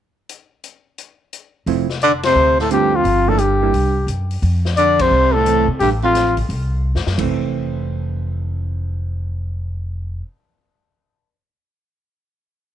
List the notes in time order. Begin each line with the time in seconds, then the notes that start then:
0.29 closed hi-hat
0.64 closed hi-hat
0.98 closed hi-hat
1.33 closed hi-hat
1.66 F1 F3 A3 C4 E4, open hi-hat
1.90 snare
2.02 D3 D5, closed hi-hat
2.23 C3 C5, snare, ride
2.35 D2
2.59 A2 A4, snare
2.71 G2 D3 A3 C4 F4 G4, closed hi-hat
2.95 F2 F4
3.04 G1, open hi-hat
3.28 A2 F3 A#3 D4 A4
3.38 G2 G4, closed hi-hat
3.61 G3 A#3 E4
3.73 C2, open hi-hat
4.07 F#2, closed hi-hat
4.31 open hi-hat
4.42 F2, open hi-hat
4.65 snare
4.77 D3 D5, closed hi-hat
4.99 C3 C5, kick, ride
5.11 C2
5.32 A2 A4
5.46 E3 A3 C4, closed hi-hat
5.68 C3
5.80 A1 G2 G4, open hi-hat
6.03 F2 F4
6.15 snare, closed hi-hat
6.37 kick, open hi-hat
6.49 C2, open hi-hat
6.95 F2, snare
7.06 F#2, snare
7.17 F1 E3 A3 C4, kick, crash